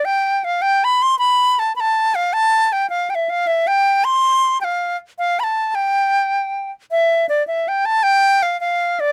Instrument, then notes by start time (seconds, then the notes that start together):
flute
0.05 G5
0.44 F5
0.62 G5
0.84 B5
1.02 C6
1.19 B5
1.59 A5
1.76 B5
1.80 A5
2.15 F5
2.33 A5
2.72 G5
2.90 F5
3.10 G5
3.15 E5
3.29 F5
3.47 E5
3.67 G5
4.04 C6
4.61 F5 G5
5.19 F5
5.40 A5 B5
5.75 G5
6.91 E5
7.29 D5
7.47 E5
7.68 G5
7.85 A5
8.03 G5
8.43 F5
8.61 F5
9.00 D5